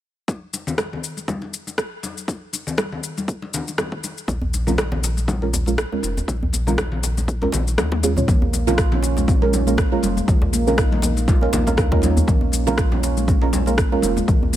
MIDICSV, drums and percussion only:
0, 0, Header, 1, 3, 480
1, 0, Start_track
1, 0, Key_signature, -5, "minor"
1, 0, Tempo, 500000
1, 270, Time_signature, 4, 2, 24, 8
1, 13981, End_track
2, 0, Start_track
2, 0, Title_t, "Djembe"
2, 4107, Note_on_c, 9, 63, 81
2, 4203, Note_off_c, 9, 63, 0
2, 4239, Note_on_c, 9, 64, 81
2, 4335, Note_off_c, 9, 64, 0
2, 4484, Note_on_c, 9, 63, 63
2, 4580, Note_off_c, 9, 63, 0
2, 4721, Note_on_c, 9, 63, 102
2, 4817, Note_off_c, 9, 63, 0
2, 4838, Note_on_c, 9, 62, 77
2, 4934, Note_off_c, 9, 62, 0
2, 5068, Note_on_c, 9, 63, 63
2, 5164, Note_off_c, 9, 63, 0
2, 5312, Note_on_c, 9, 63, 98
2, 5408, Note_off_c, 9, 63, 0
2, 5687, Note_on_c, 9, 63, 72
2, 5783, Note_off_c, 9, 63, 0
2, 5926, Note_on_c, 9, 63, 81
2, 6022, Note_off_c, 9, 63, 0
2, 6169, Note_on_c, 9, 64, 82
2, 6265, Note_off_c, 9, 64, 0
2, 6273, Note_on_c, 9, 63, 70
2, 6369, Note_off_c, 9, 63, 0
2, 6508, Note_on_c, 9, 63, 87
2, 6604, Note_off_c, 9, 63, 0
2, 6752, Note_on_c, 9, 62, 77
2, 6848, Note_off_c, 9, 62, 0
2, 6886, Note_on_c, 9, 63, 61
2, 6982, Note_off_c, 9, 63, 0
2, 7128, Note_on_c, 9, 63, 90
2, 7223, Note_on_c, 9, 62, 88
2, 7224, Note_off_c, 9, 63, 0
2, 7319, Note_off_c, 9, 62, 0
2, 7471, Note_on_c, 9, 63, 65
2, 7567, Note_off_c, 9, 63, 0
2, 7601, Note_on_c, 9, 62, 72
2, 7697, Note_off_c, 9, 62, 0
2, 7712, Note_on_c, 9, 63, 88
2, 7808, Note_off_c, 9, 63, 0
2, 7839, Note_on_c, 9, 64, 84
2, 7935, Note_off_c, 9, 64, 0
2, 7957, Note_on_c, 9, 63, 61
2, 8053, Note_off_c, 9, 63, 0
2, 8083, Note_on_c, 9, 64, 98
2, 8179, Note_off_c, 9, 64, 0
2, 8191, Note_on_c, 9, 63, 86
2, 8287, Note_off_c, 9, 63, 0
2, 8562, Note_on_c, 9, 63, 64
2, 8658, Note_off_c, 9, 63, 0
2, 8664, Note_on_c, 9, 62, 70
2, 8760, Note_off_c, 9, 62, 0
2, 8800, Note_on_c, 9, 63, 89
2, 8896, Note_off_c, 9, 63, 0
2, 9149, Note_on_c, 9, 63, 69
2, 9245, Note_off_c, 9, 63, 0
2, 9384, Note_on_c, 9, 63, 105
2, 9480, Note_off_c, 9, 63, 0
2, 9764, Note_on_c, 9, 63, 69
2, 9860, Note_off_c, 9, 63, 0
2, 10000, Note_on_c, 9, 63, 102
2, 10001, Note_on_c, 9, 64, 86
2, 10096, Note_off_c, 9, 63, 0
2, 10097, Note_off_c, 9, 64, 0
2, 10349, Note_on_c, 9, 63, 63
2, 10445, Note_off_c, 9, 63, 0
2, 10582, Note_on_c, 9, 62, 80
2, 10586, Note_on_c, 9, 63, 91
2, 10678, Note_off_c, 9, 62, 0
2, 10682, Note_off_c, 9, 63, 0
2, 10956, Note_on_c, 9, 63, 67
2, 11052, Note_off_c, 9, 63, 0
2, 11067, Note_on_c, 9, 62, 110
2, 11163, Note_off_c, 9, 62, 0
2, 11208, Note_on_c, 9, 63, 97
2, 11304, Note_off_c, 9, 63, 0
2, 11442, Note_on_c, 9, 62, 80
2, 11538, Note_off_c, 9, 62, 0
2, 11544, Note_on_c, 9, 63, 69
2, 11640, Note_off_c, 9, 63, 0
2, 11682, Note_on_c, 9, 64, 97
2, 11778, Note_off_c, 9, 64, 0
2, 11786, Note_on_c, 9, 63, 91
2, 11882, Note_off_c, 9, 63, 0
2, 11914, Note_on_c, 9, 64, 83
2, 12010, Note_off_c, 9, 64, 0
2, 12164, Note_on_c, 9, 63, 67
2, 12260, Note_off_c, 9, 63, 0
2, 12402, Note_on_c, 9, 63, 92
2, 12498, Note_off_c, 9, 63, 0
2, 12511, Note_on_c, 9, 62, 77
2, 12607, Note_off_c, 9, 62, 0
2, 12746, Note_on_c, 9, 63, 73
2, 12842, Note_off_c, 9, 63, 0
2, 12987, Note_on_c, 9, 63, 103
2, 13083, Note_off_c, 9, 63, 0
2, 13366, Note_on_c, 9, 63, 70
2, 13462, Note_off_c, 9, 63, 0
2, 13599, Note_on_c, 9, 63, 87
2, 13695, Note_off_c, 9, 63, 0
2, 13850, Note_on_c, 9, 64, 88
2, 13946, Note_off_c, 9, 64, 0
2, 13950, Note_on_c, 9, 63, 60
2, 13981, Note_off_c, 9, 63, 0
2, 13981, End_track
3, 0, Start_track
3, 0, Title_t, "Drums"
3, 270, Note_on_c, 9, 36, 118
3, 270, Note_on_c, 9, 62, 54
3, 275, Note_on_c, 9, 82, 37
3, 366, Note_off_c, 9, 36, 0
3, 366, Note_off_c, 9, 62, 0
3, 371, Note_off_c, 9, 82, 0
3, 513, Note_on_c, 9, 62, 40
3, 514, Note_on_c, 9, 82, 90
3, 609, Note_off_c, 9, 62, 0
3, 610, Note_off_c, 9, 82, 0
3, 643, Note_on_c, 9, 64, 98
3, 649, Note_on_c, 9, 82, 47
3, 739, Note_off_c, 9, 64, 0
3, 745, Note_off_c, 9, 82, 0
3, 749, Note_on_c, 9, 36, 107
3, 749, Note_on_c, 9, 37, 99
3, 753, Note_on_c, 9, 63, 89
3, 755, Note_on_c, 9, 82, 37
3, 758, Note_on_c, 9, 62, 51
3, 845, Note_off_c, 9, 36, 0
3, 845, Note_off_c, 9, 37, 0
3, 849, Note_off_c, 9, 63, 0
3, 851, Note_off_c, 9, 82, 0
3, 854, Note_off_c, 9, 62, 0
3, 894, Note_on_c, 9, 64, 88
3, 990, Note_off_c, 9, 64, 0
3, 995, Note_on_c, 9, 82, 83
3, 1091, Note_off_c, 9, 82, 0
3, 1124, Note_on_c, 9, 62, 36
3, 1128, Note_on_c, 9, 82, 52
3, 1220, Note_off_c, 9, 62, 0
3, 1224, Note_off_c, 9, 82, 0
3, 1229, Note_on_c, 9, 36, 112
3, 1230, Note_on_c, 9, 64, 82
3, 1231, Note_on_c, 9, 63, 97
3, 1235, Note_on_c, 9, 82, 37
3, 1325, Note_off_c, 9, 36, 0
3, 1326, Note_off_c, 9, 64, 0
3, 1327, Note_off_c, 9, 63, 0
3, 1331, Note_off_c, 9, 82, 0
3, 1361, Note_on_c, 9, 62, 52
3, 1457, Note_off_c, 9, 62, 0
3, 1474, Note_on_c, 9, 82, 93
3, 1570, Note_off_c, 9, 82, 0
3, 1604, Note_on_c, 9, 62, 38
3, 1609, Note_on_c, 9, 82, 51
3, 1700, Note_off_c, 9, 62, 0
3, 1705, Note_off_c, 9, 82, 0
3, 1709, Note_on_c, 9, 36, 111
3, 1709, Note_on_c, 9, 37, 101
3, 1714, Note_on_c, 9, 82, 37
3, 1805, Note_off_c, 9, 36, 0
3, 1805, Note_off_c, 9, 37, 0
3, 1810, Note_off_c, 9, 82, 0
3, 1951, Note_on_c, 9, 62, 54
3, 1952, Note_on_c, 9, 63, 54
3, 1954, Note_on_c, 9, 82, 89
3, 2047, Note_off_c, 9, 62, 0
3, 2048, Note_off_c, 9, 63, 0
3, 2050, Note_off_c, 9, 82, 0
3, 2088, Note_on_c, 9, 82, 47
3, 2184, Note_off_c, 9, 82, 0
3, 2189, Note_on_c, 9, 36, 123
3, 2191, Note_on_c, 9, 62, 53
3, 2195, Note_on_c, 9, 82, 39
3, 2285, Note_off_c, 9, 36, 0
3, 2287, Note_off_c, 9, 62, 0
3, 2291, Note_off_c, 9, 82, 0
3, 2428, Note_on_c, 9, 62, 38
3, 2434, Note_on_c, 9, 82, 93
3, 2524, Note_off_c, 9, 62, 0
3, 2530, Note_off_c, 9, 82, 0
3, 2562, Note_on_c, 9, 64, 85
3, 2568, Note_on_c, 9, 82, 52
3, 2658, Note_off_c, 9, 64, 0
3, 2664, Note_off_c, 9, 82, 0
3, 2665, Note_on_c, 9, 62, 52
3, 2669, Note_on_c, 9, 36, 118
3, 2669, Note_on_c, 9, 37, 106
3, 2670, Note_on_c, 9, 63, 87
3, 2674, Note_on_c, 9, 82, 41
3, 2761, Note_off_c, 9, 62, 0
3, 2765, Note_off_c, 9, 36, 0
3, 2765, Note_off_c, 9, 37, 0
3, 2766, Note_off_c, 9, 63, 0
3, 2770, Note_off_c, 9, 82, 0
3, 2807, Note_on_c, 9, 64, 88
3, 2903, Note_off_c, 9, 64, 0
3, 2913, Note_on_c, 9, 82, 96
3, 3009, Note_off_c, 9, 82, 0
3, 3047, Note_on_c, 9, 62, 40
3, 3049, Note_on_c, 9, 82, 53
3, 3051, Note_on_c, 9, 63, 67
3, 3143, Note_off_c, 9, 62, 0
3, 3145, Note_off_c, 9, 82, 0
3, 3147, Note_off_c, 9, 63, 0
3, 3149, Note_on_c, 9, 36, 116
3, 3155, Note_on_c, 9, 82, 38
3, 3245, Note_off_c, 9, 36, 0
3, 3251, Note_off_c, 9, 82, 0
3, 3286, Note_on_c, 9, 62, 50
3, 3382, Note_off_c, 9, 62, 0
3, 3395, Note_on_c, 9, 82, 90
3, 3398, Note_on_c, 9, 64, 99
3, 3491, Note_off_c, 9, 82, 0
3, 3494, Note_off_c, 9, 64, 0
3, 3530, Note_on_c, 9, 82, 52
3, 3532, Note_on_c, 9, 62, 38
3, 3626, Note_off_c, 9, 82, 0
3, 3628, Note_off_c, 9, 62, 0
3, 3630, Note_on_c, 9, 36, 117
3, 3630, Note_on_c, 9, 63, 106
3, 3631, Note_on_c, 9, 37, 104
3, 3636, Note_on_c, 9, 82, 39
3, 3641, Note_on_c, 9, 64, 98
3, 3726, Note_off_c, 9, 36, 0
3, 3726, Note_off_c, 9, 63, 0
3, 3727, Note_off_c, 9, 37, 0
3, 3732, Note_off_c, 9, 82, 0
3, 3737, Note_off_c, 9, 64, 0
3, 3764, Note_on_c, 9, 36, 81
3, 3860, Note_off_c, 9, 36, 0
3, 3875, Note_on_c, 9, 82, 89
3, 3876, Note_on_c, 9, 62, 49
3, 3971, Note_off_c, 9, 82, 0
3, 3972, Note_off_c, 9, 62, 0
3, 4010, Note_on_c, 9, 82, 51
3, 4106, Note_off_c, 9, 82, 0
3, 4109, Note_on_c, 9, 36, 125
3, 4110, Note_on_c, 9, 62, 52
3, 4116, Note_on_c, 9, 82, 38
3, 4205, Note_off_c, 9, 36, 0
3, 4206, Note_off_c, 9, 62, 0
3, 4212, Note_off_c, 9, 82, 0
3, 4355, Note_on_c, 9, 82, 100
3, 4358, Note_on_c, 9, 62, 39
3, 4451, Note_off_c, 9, 82, 0
3, 4454, Note_off_c, 9, 62, 0
3, 4482, Note_on_c, 9, 64, 89
3, 4489, Note_on_c, 9, 82, 52
3, 4578, Note_off_c, 9, 64, 0
3, 4585, Note_off_c, 9, 82, 0
3, 4588, Note_on_c, 9, 62, 46
3, 4589, Note_on_c, 9, 36, 118
3, 4591, Note_on_c, 9, 37, 105
3, 4595, Note_on_c, 9, 63, 87
3, 4596, Note_on_c, 9, 82, 40
3, 4684, Note_off_c, 9, 62, 0
3, 4685, Note_off_c, 9, 36, 0
3, 4687, Note_off_c, 9, 37, 0
3, 4691, Note_off_c, 9, 63, 0
3, 4692, Note_off_c, 9, 82, 0
3, 4720, Note_on_c, 9, 64, 92
3, 4816, Note_off_c, 9, 64, 0
3, 4835, Note_on_c, 9, 82, 95
3, 4931, Note_off_c, 9, 82, 0
3, 4964, Note_on_c, 9, 62, 37
3, 4969, Note_on_c, 9, 82, 53
3, 5060, Note_off_c, 9, 62, 0
3, 5065, Note_off_c, 9, 82, 0
3, 5067, Note_on_c, 9, 64, 88
3, 5069, Note_on_c, 9, 36, 117
3, 5074, Note_on_c, 9, 63, 106
3, 5076, Note_on_c, 9, 82, 41
3, 5163, Note_off_c, 9, 64, 0
3, 5165, Note_off_c, 9, 36, 0
3, 5170, Note_off_c, 9, 63, 0
3, 5172, Note_off_c, 9, 82, 0
3, 5204, Note_on_c, 9, 62, 45
3, 5300, Note_off_c, 9, 62, 0
3, 5316, Note_on_c, 9, 82, 97
3, 5412, Note_off_c, 9, 82, 0
3, 5436, Note_on_c, 9, 62, 34
3, 5448, Note_on_c, 9, 82, 52
3, 5532, Note_off_c, 9, 62, 0
3, 5544, Note_off_c, 9, 82, 0
3, 5549, Note_on_c, 9, 36, 118
3, 5550, Note_on_c, 9, 37, 108
3, 5555, Note_on_c, 9, 82, 39
3, 5645, Note_off_c, 9, 36, 0
3, 5646, Note_off_c, 9, 37, 0
3, 5651, Note_off_c, 9, 82, 0
3, 5785, Note_on_c, 9, 63, 60
3, 5789, Note_on_c, 9, 62, 51
3, 5795, Note_on_c, 9, 82, 90
3, 5881, Note_off_c, 9, 63, 0
3, 5885, Note_off_c, 9, 62, 0
3, 5891, Note_off_c, 9, 82, 0
3, 5929, Note_on_c, 9, 82, 53
3, 6025, Note_off_c, 9, 82, 0
3, 6029, Note_on_c, 9, 36, 119
3, 6033, Note_on_c, 9, 62, 50
3, 6035, Note_on_c, 9, 82, 41
3, 6125, Note_off_c, 9, 36, 0
3, 6129, Note_off_c, 9, 62, 0
3, 6131, Note_off_c, 9, 82, 0
3, 6267, Note_on_c, 9, 62, 37
3, 6275, Note_on_c, 9, 82, 91
3, 6363, Note_off_c, 9, 62, 0
3, 6371, Note_off_c, 9, 82, 0
3, 6402, Note_on_c, 9, 64, 91
3, 6410, Note_on_c, 9, 82, 49
3, 6498, Note_off_c, 9, 64, 0
3, 6506, Note_off_c, 9, 82, 0
3, 6509, Note_on_c, 9, 36, 125
3, 6509, Note_on_c, 9, 37, 103
3, 6512, Note_on_c, 9, 62, 44
3, 6513, Note_on_c, 9, 63, 86
3, 6515, Note_on_c, 9, 82, 39
3, 6605, Note_off_c, 9, 36, 0
3, 6605, Note_off_c, 9, 37, 0
3, 6608, Note_off_c, 9, 62, 0
3, 6609, Note_off_c, 9, 63, 0
3, 6611, Note_off_c, 9, 82, 0
3, 6641, Note_on_c, 9, 64, 84
3, 6737, Note_off_c, 9, 64, 0
3, 6753, Note_on_c, 9, 82, 93
3, 6849, Note_off_c, 9, 82, 0
3, 6888, Note_on_c, 9, 82, 54
3, 6889, Note_on_c, 9, 63, 58
3, 6890, Note_on_c, 9, 62, 33
3, 6984, Note_off_c, 9, 82, 0
3, 6985, Note_off_c, 9, 63, 0
3, 6986, Note_off_c, 9, 62, 0
3, 6990, Note_on_c, 9, 36, 118
3, 6995, Note_on_c, 9, 82, 40
3, 7086, Note_off_c, 9, 36, 0
3, 7091, Note_off_c, 9, 82, 0
3, 7119, Note_on_c, 9, 62, 49
3, 7215, Note_off_c, 9, 62, 0
3, 7233, Note_on_c, 9, 64, 93
3, 7234, Note_on_c, 9, 82, 97
3, 7329, Note_off_c, 9, 64, 0
3, 7330, Note_off_c, 9, 82, 0
3, 7368, Note_on_c, 9, 82, 52
3, 7372, Note_on_c, 9, 62, 35
3, 7464, Note_off_c, 9, 82, 0
3, 7468, Note_off_c, 9, 62, 0
3, 7469, Note_on_c, 9, 37, 99
3, 7469, Note_on_c, 9, 48, 57
3, 7470, Note_on_c, 9, 36, 114
3, 7471, Note_on_c, 9, 63, 98
3, 7474, Note_on_c, 9, 82, 40
3, 7475, Note_on_c, 9, 64, 98
3, 7565, Note_off_c, 9, 37, 0
3, 7565, Note_off_c, 9, 48, 0
3, 7566, Note_off_c, 9, 36, 0
3, 7567, Note_off_c, 9, 63, 0
3, 7570, Note_off_c, 9, 82, 0
3, 7571, Note_off_c, 9, 64, 0
3, 7603, Note_on_c, 9, 36, 85
3, 7603, Note_on_c, 9, 48, 61
3, 7699, Note_off_c, 9, 36, 0
3, 7699, Note_off_c, 9, 48, 0
3, 7710, Note_on_c, 9, 62, 48
3, 7713, Note_on_c, 9, 82, 95
3, 7806, Note_off_c, 9, 62, 0
3, 7809, Note_off_c, 9, 82, 0
3, 7842, Note_on_c, 9, 45, 82
3, 7847, Note_on_c, 9, 82, 54
3, 7938, Note_off_c, 9, 45, 0
3, 7943, Note_off_c, 9, 82, 0
3, 7949, Note_on_c, 9, 47, 87
3, 7950, Note_on_c, 9, 36, 117
3, 7951, Note_on_c, 9, 63, 61
3, 7955, Note_on_c, 9, 82, 37
3, 7956, Note_on_c, 9, 62, 53
3, 8045, Note_off_c, 9, 47, 0
3, 8046, Note_off_c, 9, 36, 0
3, 8047, Note_off_c, 9, 63, 0
3, 8051, Note_off_c, 9, 82, 0
3, 8052, Note_off_c, 9, 62, 0
3, 8195, Note_on_c, 9, 62, 41
3, 8195, Note_on_c, 9, 82, 93
3, 8291, Note_off_c, 9, 62, 0
3, 8291, Note_off_c, 9, 82, 0
3, 8328, Note_on_c, 9, 82, 51
3, 8332, Note_on_c, 9, 64, 96
3, 8424, Note_off_c, 9, 82, 0
3, 8428, Note_off_c, 9, 64, 0
3, 8428, Note_on_c, 9, 37, 106
3, 8430, Note_on_c, 9, 36, 114
3, 8433, Note_on_c, 9, 62, 53
3, 8433, Note_on_c, 9, 82, 40
3, 8524, Note_off_c, 9, 37, 0
3, 8526, Note_off_c, 9, 36, 0
3, 8529, Note_off_c, 9, 62, 0
3, 8529, Note_off_c, 9, 82, 0
3, 8562, Note_on_c, 9, 64, 91
3, 8564, Note_on_c, 9, 63, 93
3, 8658, Note_off_c, 9, 64, 0
3, 8660, Note_off_c, 9, 63, 0
3, 8675, Note_on_c, 9, 82, 90
3, 8771, Note_off_c, 9, 82, 0
3, 8808, Note_on_c, 9, 82, 53
3, 8809, Note_on_c, 9, 62, 43
3, 8904, Note_off_c, 9, 82, 0
3, 8905, Note_off_c, 9, 62, 0
3, 8907, Note_on_c, 9, 64, 98
3, 8909, Note_on_c, 9, 36, 112
3, 8915, Note_on_c, 9, 82, 37
3, 9003, Note_off_c, 9, 64, 0
3, 9005, Note_off_c, 9, 36, 0
3, 9011, Note_off_c, 9, 82, 0
3, 9043, Note_on_c, 9, 62, 53
3, 9139, Note_off_c, 9, 62, 0
3, 9152, Note_on_c, 9, 82, 92
3, 9153, Note_on_c, 9, 63, 94
3, 9248, Note_off_c, 9, 82, 0
3, 9249, Note_off_c, 9, 63, 0
3, 9287, Note_on_c, 9, 82, 53
3, 9290, Note_on_c, 9, 62, 39
3, 9383, Note_off_c, 9, 82, 0
3, 9386, Note_off_c, 9, 62, 0
3, 9389, Note_on_c, 9, 36, 114
3, 9389, Note_on_c, 9, 37, 107
3, 9395, Note_on_c, 9, 82, 38
3, 9485, Note_off_c, 9, 36, 0
3, 9485, Note_off_c, 9, 37, 0
3, 9491, Note_off_c, 9, 82, 0
3, 9626, Note_on_c, 9, 62, 50
3, 9630, Note_on_c, 9, 63, 94
3, 9632, Note_on_c, 9, 82, 86
3, 9722, Note_off_c, 9, 62, 0
3, 9726, Note_off_c, 9, 63, 0
3, 9728, Note_off_c, 9, 82, 0
3, 9766, Note_on_c, 9, 82, 49
3, 9862, Note_off_c, 9, 82, 0
3, 9868, Note_on_c, 9, 36, 127
3, 9868, Note_on_c, 9, 47, 86
3, 9873, Note_on_c, 9, 82, 39
3, 9876, Note_on_c, 9, 62, 55
3, 9964, Note_off_c, 9, 36, 0
3, 9964, Note_off_c, 9, 47, 0
3, 9969, Note_off_c, 9, 82, 0
3, 9972, Note_off_c, 9, 62, 0
3, 10110, Note_on_c, 9, 62, 37
3, 10112, Note_on_c, 9, 82, 100
3, 10206, Note_off_c, 9, 62, 0
3, 10208, Note_off_c, 9, 82, 0
3, 10247, Note_on_c, 9, 82, 50
3, 10254, Note_on_c, 9, 64, 86
3, 10343, Note_off_c, 9, 82, 0
3, 10348, Note_on_c, 9, 36, 121
3, 10348, Note_on_c, 9, 37, 107
3, 10349, Note_on_c, 9, 62, 50
3, 10350, Note_off_c, 9, 64, 0
3, 10353, Note_on_c, 9, 82, 41
3, 10444, Note_off_c, 9, 36, 0
3, 10444, Note_off_c, 9, 37, 0
3, 10445, Note_off_c, 9, 62, 0
3, 10449, Note_off_c, 9, 82, 0
3, 10486, Note_on_c, 9, 63, 97
3, 10492, Note_on_c, 9, 64, 87
3, 10582, Note_off_c, 9, 63, 0
3, 10586, Note_on_c, 9, 47, 75
3, 10588, Note_off_c, 9, 64, 0
3, 10591, Note_on_c, 9, 82, 95
3, 10682, Note_off_c, 9, 47, 0
3, 10687, Note_off_c, 9, 82, 0
3, 10722, Note_on_c, 9, 62, 42
3, 10726, Note_on_c, 9, 82, 52
3, 10818, Note_off_c, 9, 62, 0
3, 10822, Note_off_c, 9, 82, 0
3, 10827, Note_on_c, 9, 36, 121
3, 10831, Note_on_c, 9, 82, 39
3, 10836, Note_on_c, 9, 63, 115
3, 10923, Note_off_c, 9, 36, 0
3, 10927, Note_off_c, 9, 82, 0
3, 10932, Note_off_c, 9, 63, 0
3, 10970, Note_on_c, 9, 62, 50
3, 11066, Note_off_c, 9, 62, 0
3, 11068, Note_on_c, 9, 63, 108
3, 11070, Note_on_c, 9, 82, 94
3, 11073, Note_on_c, 9, 64, 112
3, 11164, Note_off_c, 9, 63, 0
3, 11166, Note_off_c, 9, 82, 0
3, 11169, Note_off_c, 9, 64, 0
3, 11201, Note_on_c, 9, 63, 96
3, 11205, Note_on_c, 9, 62, 42
3, 11205, Note_on_c, 9, 82, 52
3, 11297, Note_off_c, 9, 63, 0
3, 11301, Note_off_c, 9, 62, 0
3, 11301, Note_off_c, 9, 82, 0
3, 11302, Note_on_c, 9, 64, 108
3, 11306, Note_on_c, 9, 37, 105
3, 11307, Note_on_c, 9, 36, 124
3, 11312, Note_on_c, 9, 82, 40
3, 11398, Note_off_c, 9, 64, 0
3, 11402, Note_off_c, 9, 37, 0
3, 11403, Note_off_c, 9, 36, 0
3, 11408, Note_off_c, 9, 82, 0
3, 11441, Note_on_c, 9, 36, 83
3, 11537, Note_off_c, 9, 36, 0
3, 11537, Note_on_c, 9, 62, 49
3, 11551, Note_on_c, 9, 82, 95
3, 11559, Note_on_c, 9, 63, 117
3, 11633, Note_off_c, 9, 62, 0
3, 11647, Note_off_c, 9, 82, 0
3, 11655, Note_off_c, 9, 63, 0
3, 11684, Note_on_c, 9, 82, 55
3, 11780, Note_off_c, 9, 82, 0
3, 11783, Note_on_c, 9, 63, 63
3, 11786, Note_on_c, 9, 47, 89
3, 11787, Note_on_c, 9, 36, 126
3, 11788, Note_on_c, 9, 62, 47
3, 11791, Note_on_c, 9, 82, 40
3, 11879, Note_off_c, 9, 63, 0
3, 11882, Note_off_c, 9, 47, 0
3, 11883, Note_off_c, 9, 36, 0
3, 11884, Note_off_c, 9, 62, 0
3, 11887, Note_off_c, 9, 82, 0
3, 12018, Note_on_c, 9, 62, 40
3, 12031, Note_on_c, 9, 82, 101
3, 12114, Note_off_c, 9, 62, 0
3, 12127, Note_off_c, 9, 82, 0
3, 12162, Note_on_c, 9, 64, 96
3, 12165, Note_on_c, 9, 82, 53
3, 12258, Note_off_c, 9, 64, 0
3, 12261, Note_off_c, 9, 82, 0
3, 12265, Note_on_c, 9, 37, 106
3, 12265, Note_on_c, 9, 62, 52
3, 12268, Note_on_c, 9, 36, 122
3, 12271, Note_on_c, 9, 82, 41
3, 12361, Note_off_c, 9, 37, 0
3, 12361, Note_off_c, 9, 62, 0
3, 12364, Note_off_c, 9, 36, 0
3, 12367, Note_off_c, 9, 82, 0
3, 12399, Note_on_c, 9, 64, 83
3, 12404, Note_on_c, 9, 63, 90
3, 12495, Note_off_c, 9, 64, 0
3, 12500, Note_off_c, 9, 63, 0
3, 12512, Note_on_c, 9, 82, 99
3, 12608, Note_off_c, 9, 82, 0
3, 12645, Note_on_c, 9, 82, 57
3, 12648, Note_on_c, 9, 62, 36
3, 12741, Note_off_c, 9, 82, 0
3, 12744, Note_off_c, 9, 62, 0
3, 12746, Note_on_c, 9, 64, 97
3, 12749, Note_on_c, 9, 36, 117
3, 12752, Note_on_c, 9, 82, 40
3, 12842, Note_off_c, 9, 64, 0
3, 12845, Note_off_c, 9, 36, 0
3, 12848, Note_off_c, 9, 82, 0
3, 12879, Note_on_c, 9, 62, 55
3, 12975, Note_off_c, 9, 62, 0
3, 12987, Note_on_c, 9, 63, 112
3, 12991, Note_on_c, 9, 82, 99
3, 13083, Note_off_c, 9, 63, 0
3, 13087, Note_off_c, 9, 82, 0
3, 13114, Note_on_c, 9, 62, 40
3, 13126, Note_on_c, 9, 82, 53
3, 13210, Note_off_c, 9, 62, 0
3, 13222, Note_off_c, 9, 82, 0
3, 13227, Note_on_c, 9, 37, 108
3, 13229, Note_on_c, 9, 36, 118
3, 13232, Note_on_c, 9, 82, 41
3, 13323, Note_off_c, 9, 37, 0
3, 13325, Note_off_c, 9, 36, 0
3, 13328, Note_off_c, 9, 82, 0
3, 13462, Note_on_c, 9, 63, 98
3, 13469, Note_on_c, 9, 62, 49
3, 13472, Note_on_c, 9, 82, 96
3, 13558, Note_off_c, 9, 63, 0
3, 13565, Note_off_c, 9, 62, 0
3, 13568, Note_off_c, 9, 82, 0
3, 13605, Note_on_c, 9, 82, 53
3, 13701, Note_off_c, 9, 82, 0
3, 13708, Note_on_c, 9, 47, 94
3, 13709, Note_on_c, 9, 36, 126
3, 13710, Note_on_c, 9, 62, 45
3, 13713, Note_on_c, 9, 82, 41
3, 13804, Note_off_c, 9, 47, 0
3, 13805, Note_off_c, 9, 36, 0
3, 13806, Note_off_c, 9, 62, 0
3, 13809, Note_off_c, 9, 82, 0
3, 13950, Note_on_c, 9, 62, 39
3, 13981, Note_off_c, 9, 62, 0
3, 13981, End_track
0, 0, End_of_file